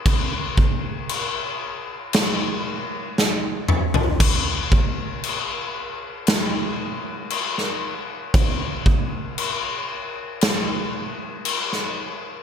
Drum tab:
CC |x---x---x-------|x---x---x---x---|x---x---x---x---|
SD |--------o---o---|--------o----o--|--------o----o--|
T2 |--------------o-|----------------|----------------|
FT |---------------o|----------------|----------------|
BD |o-o-------------|o-o-------------|o-o-------------|